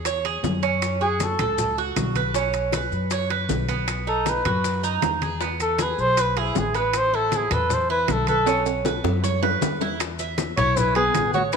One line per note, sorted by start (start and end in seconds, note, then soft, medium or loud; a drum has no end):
0.00 0.39 E2 medium
0.05 0.24 C#5 medium
0.05 high bongo medium
0.05 high conga soft
0.05 high timbale medium
0.05 maracas medium
0.25 0.62 G#4 medium
0.25 high bongo soft
0.25 high conga soft
0.25 high timbale medium
0.43 1.33 F#2 loud
0.43 high bongo soft
0.43 low bongo medium
0.43 high conga medium
0.43 low timbale medium
0.43 maracas medium
0.63 1.00 C#4 medium
0.63 high timbale medium
0.63 maracas soft
0.82 high bongo medium
0.82 high conga soft
0.82 high timbale medium
0.82 maracas medium
1.01 1.38 F#4 medium
1.01 1.25 G#4 medium
1.01 high bongo soft
1.01 high conga soft
1.20 1.79 A4 medium
1.20 high bongo medium
1.20 high conga medium
1.20 high timbale medium
1.20 low timbale medium
1.20 maracas medium
1.39 1.93 C#2 medium
1.39 1.77 A4 medium
1.39 high bongo soft
1.39 high conga medium
1.39 low conga medium
1.39 high timbale loud
1.39 maracas soft
1.58 high bongo medium
1.58 high conga soft
1.58 low conga medium
1.58 maracas medium
1.77 2.15 F#4 medium
1.77 high bongo soft
1.77 high conga soft
1.96 2.86 B1 medium
1.96 high bongo soft
1.96 low bongo medium
1.96 high conga medium
1.96 high timbale medium
1.96 low timbale medium
1.96 maracas medium
2.15 2.35 B4 medium
2.15 high conga medium
2.15 high timbale medium
2.15 maracas soft
2.34 2.72 C#4 medium
2.34 high bongo medium
2.34 maracas medium
2.53 high bongo soft
2.53 high conga soft
2.53 high timbale medium
2.53 maracas medium
2.72 3.11 B4 medium
2.72 high bongo soft
2.72 high conga medium
2.72 high timbale medium
2.72 low timbale medium
2.72 maracas medium
2.91 3.45 F#2 medium
2.91 high bongo soft
2.91 maracas soft
3.11 3.30 C#5 medium
3.11 high bongo medium
3.11 high conga soft
3.11 high timbale medium
3.11 maracas medium
3.30 3.68 B4 medium
3.30 high bongo soft
3.30 high conga soft
3.30 high timbale medium
3.49 4.39 B1 medium
3.49 high bongo soft
3.49 low bongo medium
3.49 high conga loud
3.49 low timbale medium
3.49 maracas medium
3.68 4.06 B3 medium
3.68 high conga medium
3.68 high timbale medium
3.68 maracas soft
3.88 high bongo medium
3.88 high conga soft
3.88 high timbale medium
3.88 maracas medium
4.07 4.44 D#4 medium
4.07 4.31 A4 medium
4.07 high bongo soft
4.07 high conga soft
4.26 4.85 B4 medium
4.26 high bongo medium
4.26 high conga medium
4.26 high timbale medium
4.26 low timbale medium
4.26 maracas medium
4.45 4.99 F#2 loud
4.45 4.83 F#4 medium
4.45 high bongo soft
4.45 high conga medium
4.45 low conga medium
4.45 high timbale loud
4.45 maracas soft
4.64 high bongo medium
4.64 high conga soft
4.64 maracas medium
4.83 5.21 D#4 medium
4.83 high bongo soft
4.83 high conga soft
4.83 maracas medium
5.02 5.92 E2 medium
5.02 high bongo soft
5.02 low bongo medium
5.02 high conga medium
5.02 high timbale medium
5.02 low timbale medium
5.02 maracas medium
5.22 5.40 G#4 medium
5.22 high conga medium
5.22 high timbale medium
5.22 maracas soft
5.41 5.78 B3 medium
5.41 high bongo medium
5.41 maracas medium
5.60 5.84 A4 medium
5.60 high bongo soft
5.60 high conga soft
5.60 high timbale medium
5.60 maracas medium
5.78 6.16 G#4 medium
5.78 high bongo medium
5.78 high conga medium
5.78 high timbale medium
5.78 low timbale medium
5.78 maracas medium
5.83 6.01 B4 medium
5.98 6.52 B1 medium
5.98 6.22 C5 loud
5.98 high bongo soft
5.98 maracas soft
6.17 6.36 B4 medium
6.17 6.40 B4 medium
6.17 high bongo medium
6.17 high conga soft
6.17 high timbale medium
6.17 maracas medium
6.36 6.60 E4 medium
6.36 6.74 G#4 medium
6.36 high bongo soft
6.36 high conga soft
6.36 high timbale medium
6.55 7.45 A1 medium
6.55 6.77 G#4 medium
6.55 high bongo soft
6.55 low bongo medium
6.55 high conga medium
6.55 low timbale medium
6.55 maracas medium
6.75 7.12 B3 medium
6.75 6.99 B4 medium
6.75 high timbale medium
6.75 maracas soft
6.93 7.16 C5 medium
6.93 high bongo medium
6.93 high conga soft
6.93 high timbale loud
6.93 maracas medium
7.13 7.50 E4 medium
7.13 7.37 A4 medium
7.13 high bongo soft
7.13 high conga soft
7.32 high bongo medium
7.32 high conga loud
7.32 high timbale medium
7.32 low timbale medium
7.32 maracas medium
7.36 7.54 G#4 medium
7.51 8.04 E2 medium
7.51 7.88 A4 medium
7.51 7.75 B4 loud
7.51 high bongo soft
7.51 high conga medium
7.51 low conga medium
7.51 high timbale loud
7.51 maracas soft
7.70 7.90 C5 medium
7.70 high bongo medium
7.70 high conga soft
7.70 low conga medium
7.70 maracas medium
7.89 8.27 E4 medium
7.89 8.13 B4 medium
7.89 high bongo soft
7.89 high conga soft
8.08 8.98 B1 medium
8.08 8.28 A4 medium
8.08 high bongo soft
8.08 low bongo medium
8.08 high conga medium
8.08 high timbale medium
8.08 low timbale medium
8.08 maracas medium
8.27 8.64 A4 loud
8.27 8.47 B4 medium
8.27 high conga medium
8.27 high timbale medium
8.27 maracas soft
8.46 8.84 C#4 medium
8.46 high bongo medium
8.46 high timbale loud
8.46 maracas medium
8.66 high bongo soft
8.66 high conga soft
8.66 high timbale medium
8.66 maracas medium
8.85 9.23 B4 medium
8.85 high bongo medium
8.85 high conga medium
8.85 high timbale medium
8.85 maracas medium
9.04 9.57 F#2 loud
9.04 high bongo medium
9.04 high timbale loud
9.04 maracas soft
9.24 9.42 C#5 medium
9.24 high conga soft
9.24 low timbale medium
9.24 maracas medium
9.42 9.80 B4 medium
9.42 low bongo medium
9.42 high conga soft
9.42 low timbale medium
9.61 10.51 E2 medium
9.61 low bongo loud
9.61 high conga medium
9.61 low timbale medium
9.61 maracas medium
9.81 10.00 E4 medium
9.81 low bongo medium
9.81 low timbale medium
9.81 maracas soft
10.00 high bongo medium
10.00 high conga soft
10.00 high timbale loud
10.00 maracas medium
10.19 10.56 E5 medium
10.19 high bongo soft
10.19 high conga soft
10.19 maracas medium
10.38 high bongo medium
10.38 high conga loud
10.38 high timbale medium
10.38 low timbale medium
10.38 maracas medium
10.57 11.11 B1 loud
10.57 10.76 E4 medium
10.57 10.95 E4 medium
10.57 10.78 C#5 loud
10.57 high conga soft
10.57 low conga medium
10.57 high timbale medium
10.57 maracas soft
10.77 10.96 E4 medium
10.77 10.95 B4 loud
10.77 high bongo medium
10.77 high conga soft
10.77 low conga medium
10.77 maracas medium
10.95 11.32 B3 medium
10.95 11.31 G#4 medium
10.95 11.33 B4 medium
10.95 high bongo soft
10.95 high conga soft
10.95 high timbale medium
11.14 11.57 A1 medium
11.14 high bongo soft
11.14 low bongo medium
11.14 high conga medium
11.14 high timbale loud
11.14 low timbale medium
11.14 maracas medium
11.34 11.40 A3 medium
11.34 11.43 F#4 medium
11.34 11.53 C#5 medium
11.34 high bongo soft
11.34 high conga medium
11.34 maracas soft
11.52 11.57 E4 medium
11.52 11.57 B4 medium
11.52 high bongo medium
11.52 high conga soft
11.52 high timbale medium
11.52 maracas medium